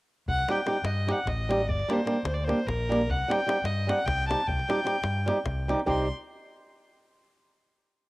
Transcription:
0.28 fingered electric bass C2, violin F#5, davul low
0.39 davul high
0.48 nylon-string guitar G3 C4 D#4 G4, violin G5, davul high
0.66 nylon-string guitar G3 C4 D#4 G4, davul high
0.84 fingered electric bass G2, violin D#5, davul high
1.07 nylon-string guitar G3 C4 D#4 G4, davul high
1.11 violin F#5
1.18 davul high
1.26 fingered electric bass A1, violin D#5, davul high, davul low
1.49 nylon-string guitar G3 C4 D#4 G4, davul high
1.60 davul high
1.68 fingered electric bass G1, violin D5, davul low
1.79 davul high
1.88 nylon-string guitar G3 A#3 D4 G4, davul high
1.93 violin C5
2.05 nylon-string guitar G3 A#3 D4 G4, davul high
2.25 fingered electric bass D2, violin C5, davul high
2.34 violin D5
2.44 nylon-string guitar G3 A#3 D4, violin C5
2.49 nylon-string guitar G4, davul high
2.60 davul high
2.67 fingered electric bass A#1, violin A#4, davul high, davul low
2.89 nylon-string guitar G3 A#3 D4 G4, davul high
3.01 davul high
3.08 fingered electric bass C2, violin F#5, davul low
3.28 nylon-string guitar G3 C4 D#4 G4, violin G5, davul high
3.46 nylon-string guitar G3 C4 D#4 G4, davul high
3.64 fingered electric bass G2, violin D#5, davul high
3.87 nylon-string guitar G3 C4 D#4 G4, violin F#5, davul high
3.99 davul high
4.05 fingered electric bass C2, violin G5, davul high, davul low
4.29 nylon-string guitar G3 C4 D#4 G4, violin A5, davul high
4.40 davul high
4.48 fingered electric bass C2, violin G5, davul low
4.59 davul high
4.69 nylon-string guitar G3 C4 D#4 G4, davul high
4.84 nylon-string guitar G3 C4 D#4 G4, davul high
5.04 fingered electric bass G2, davul high
5.26 nylon-string guitar G3 C4 D#4 G4, davul high
5.46 fingered electric bass C2, davul high, davul low
5.68 nylon-string guitar G3 C4 D#4 G4, davul high
5.80 davul high
5.86 fingered electric bass C2, nylon-string guitar G3 C4 D#4 G4, violin C6, davul low

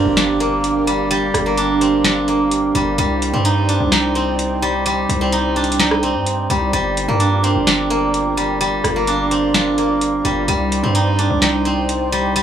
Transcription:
Already playing: guzheng G3 A#3 C4 D4 G4 A#4 D5, analog synth pad D4 G4 A#4 F5, impact
0.05 808-style bass G1
0.17 guzheng D4, snare, closed hi-hat
0.40 guzheng A#3, closed hi-hat
0.64 closed hi-hat
0.87 guzheng G3, closed hi-hat
1.11 guzheng G3, closed hi-hat
1.34 808-style bass G1, cross-stick, closed hi-hat
1.46 guzheng A#3
1.57 guzheng D4, closed hi-hat
1.81 guzheng C4, closed hi-hat
2.04 guzheng D4, snare, closed hi-hat
2.28 guzheng A#3, closed hi-hat
2.51 closed hi-hat
2.75 808-style bass G1, guzheng G3, closed hi-hat
2.98 808-style bass C2, guzheng G3, analog synth pad D#4 C5 D5 G5, closed hi-hat
3.22 closed hi-hat
3.33 808-style bass G2, guzheng C4
3.45 guzheng D#4, closed hi-hat
3.69 guzheng D4, closed hi-hat
3.80 808-style bass C2
3.92 guzheng D#4, snare, closed hi-hat
4.15 guzheng C4, closed hi-hat
4.39 closed hi-hat
4.62 guzheng G3, closed hi-hat
4.86 guzheng G3, closed hi-hat
5.09 808-style bass C2, closed hi-hat
5.21 guzheng C4
5.32 guzheng D#4, closed hi-hat
5.56 guzheng D4, closed hi-hat
5.64 closed hi-hat
5.72 closed hi-hat
5.79 guzheng D#4, snare, closed hi-hat
5.91 cross-stick
6.03 guzheng C4, closed hi-hat
6.15 808-style bass G2
6.26 closed hi-hat
6.50 808-style bass C2, guzheng G3, closed hi-hat
6.73 808-style bass G1, guzheng G3, analog synth pad F4 A#4, closed hi-hat
6.97 closed hi-hat
7.08 808-style bass G2, guzheng A#3
7.20 guzheng D4, closed hi-hat
7.44 guzheng C4, closed hi-hat
7.55 808-style bass G1
7.67 guzheng D4, snare, closed hi-hat
7.90 guzheng A#3, closed hi-hat
8.14 closed hi-hat
8.37 guzheng G3, closed hi-hat
8.61 guzheng G3, analog synth pad F5, closed hi-hat
8.84 808-style bass G1, cross-stick, closed hi-hat
8.96 guzheng A#3
9.07 guzheng D4, closed hi-hat
9.31 guzheng C4, closed hi-hat
9.54 guzheng D4, snare, closed hi-hat
9.78 guzheng A#3, closed hi-hat
10.01 closed hi-hat
10.25 808-style bass G1, guzheng G3, closed hi-hat
10.48 808-style bass C2, guzheng G3, analog synth pad D#4 C5 D5 G5, closed hi-hat
10.72 closed hi-hat
10.83 808-style bass G2, guzheng C4
10.95 guzheng D#4, closed hi-hat
11.19 guzheng D4, closed hi-hat
11.30 808-style bass C2
11.42 guzheng D#4, snare, closed hi-hat
11.65 guzheng C4, closed hi-hat
11.89 closed hi-hat
12.12 guzheng G3, closed hi-hat
12.36 guzheng G3, analog synth pad D#5, closed hi-hat

